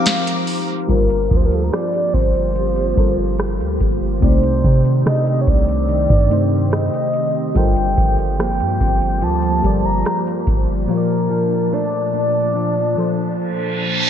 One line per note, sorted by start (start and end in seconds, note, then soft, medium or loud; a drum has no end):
0.00 0.91 F3 medium
0.00 0.92 F3 medium
0.00 0.91 C4 medium
0.00 1.72 C4 medium
0.00 0.91 D#4 medium
0.00 0.98 D#4 medium
0.00 0.82 G4 medium
0.00 0.90 A#4 medium
0.00 1.76 A#4 medium
0.00 0.85 C5 medium
0.00 0.48 F5 loud
0.00 0.85 F5 medium
0.00 0.85 A#5 medium
0.00 0.87 D6 medium
0.06 snare loud
0.06 closed hi-hat medium
0.27 closed hi-hat medium
0.47 open hi-hat medium
0.88 1.29 G1 loud
0.88 4.22 G2 medium
0.88 2.43 G3 medium
0.88 4.19 A#3 medium
0.88 2.43 F4 medium
0.88 4.19 F4 medium
0.88 10.85 G4 medium
0.88 2.44 G4 medium
0.88 1.38 A#4 loud
0.88 2.44 A#4 medium
0.88 10.85 C5 medium
0.88 2.45 C5 medium
0.88 kick loud
0.88 closed hi-hat medium
1.10 closed hi-hat medium
1.31 1.71 D2 loud
1.31 1.71 F3 medium
1.31 kick medium
1.31 closed hi-hat soft
1.36 1.47 C5 medium
1.45 1.56 A#4 medium
1.52 1.65 A4 medium
1.52 closed hi-hat soft
1.63 1.74 A#4 medium
1.72 2.54 F3 medium
1.72 4.31 A#3 medium
1.72 2.14 C4 medium
1.72 1.93 D5 loud
1.72 cross-stick loud
1.72 closed hi-hat medium
1.93 2.15 D5 loud
1.93 closed hi-hat medium
2.14 2.94 G1 loud
2.14 5.06 C4 medium
2.14 3.80 C5 loud
2.14 kick medium
2.14 closed hi-hat medium
2.35 closed hi-hat soft
2.56 4.31 F3 medium
2.56 closed hi-hat medium
2.76 closed hi-hat soft
2.96 3.62 G1 loud
2.96 4.12 G3 medium
2.96 4.13 F4 medium
2.96 4.13 A4 medium
2.96 4.14 A#4 medium
2.96 4.14 C5 medium
2.96 kick medium
2.96 closed hi-hat medium
3.39 cross-stick loud
3.39 closed hi-hat medium
3.60 3.80 D2 medium
3.60 closed hi-hat medium
3.80 4.21 G1 loud
3.80 kick medium
3.80 closed hi-hat medium
4.20 4.63 C2 loud
4.20 5.76 C3 medium
4.20 7.56 C3 medium
4.20 7.52 D#3 medium
4.20 5.76 A3 medium
4.20 7.52 C4 medium
4.20 5.77 D#4 medium
4.20 5.02 C5 medium
4.20 5.78 D5 medium
4.20 kick loud
4.20 closed hi-hat medium
4.43 closed hi-hat medium
4.64 5.04 C3 loud
4.64 5.04 D#3 medium
4.64 kick medium
4.64 closed hi-hat soft
4.85 closed hi-hat medium
5.06 5.46 C3 loud
5.06 5.88 D#3 medium
5.06 8.39 A3 medium
5.06 5.92 D4 medium
5.06 5.26 D#5 medium
5.06 cross-stick loud
5.06 closed hi-hat medium
5.27 5.40 D#5 medium
5.27 closed hi-hat medium
5.41 5.50 C#5 medium
5.47 6.08 C2 loud
5.47 6.72 D5 loud
5.47 kick medium
5.47 closed hi-hat medium
5.68 closed hi-hat soft
5.88 7.64 D#3 medium
5.88 closed hi-hat medium
6.09 6.90 G2 loud
6.09 kick medium
6.09 closed hi-hat soft
6.29 7.46 C3 medium
6.29 7.46 A3 medium
6.29 7.47 D#4 medium
6.29 7.48 C5 medium
6.29 closed hi-hat medium
6.72 7.58 D#5 loud
6.72 cross-stick loud
6.72 closed hi-hat medium
6.94 closed hi-hat medium
7.14 closed hi-hat medium
7.54 7.96 G1 loud
7.54 10.89 G2 medium
7.54 14.10 F3 medium
7.54 9.09 G3 medium
7.54 10.86 A#3 medium
7.54 9.10 F4 medium
7.54 9.10 A4 medium
7.54 9.11 A#4 medium
7.54 9.11 C5 medium
7.54 8.39 G5 loud
7.54 kick loud
7.54 closed hi-hat medium
7.76 closed hi-hat medium
7.97 8.62 G1 loud
7.97 8.39 F3 medium
7.97 kick medium
7.97 closed hi-hat soft
8.18 closed hi-hat medium
8.39 9.22 F3 medium
8.39 11.72 A#3 medium
8.39 8.79 C4 medium
8.39 9.25 G5 loud
8.39 cross-stick loud
8.39 closed hi-hat medium
8.60 8.80 G2 loud
8.60 closed hi-hat medium
8.81 9.24 G1 loud
8.81 10.97 C4 medium
8.81 kick medium
8.81 closed hi-hat medium
9.02 closed hi-hat soft
9.22 9.62 D2 medium
9.22 11.30 F3 medium
9.22 9.87 A5 loud
9.22 closed hi-hat medium
9.42 closed hi-hat medium
9.62 10.04 G1 loud
9.62 10.79 G3 medium
9.62 10.79 F4 medium
9.62 10.80 G4 medium
9.62 10.80 A#4 medium
9.62 10.81 D5 medium
9.62 kick medium
9.62 closed hi-hat medium
9.86 10.48 A#5 loud
10.05 cross-stick loud
10.05 closed hi-hat medium
10.27 closed hi-hat medium
10.47 10.87 G1 loud
10.47 kick medium
10.47 closed hi-hat medium
10.87 12.42 A#2 medium
10.87 14.10 A#2 medium
10.87 12.43 F3 medium
10.87 14.10 D4 medium
10.87 12.44 F4 medium
10.87 11.75 A#4 loud
10.87 14.10 A5 medium
10.91 10.97 C#5 medium
10.97 12.48 D5 medium
11.30 11.71 F3 medium
11.72 12.54 F3 medium
11.72 14.10 A3 medium
11.72 12.13 D4 medium
11.72 12.15 D5 loud
12.14 14.10 D4 medium
12.14 13.77 D5 loud
12.55 14.10 F3 medium
12.55 reverse cymbal medium
12.96 14.10 A#2 medium
12.96 14.10 F3 medium
12.96 14.10 A4 medium
12.96 14.10 C5 medium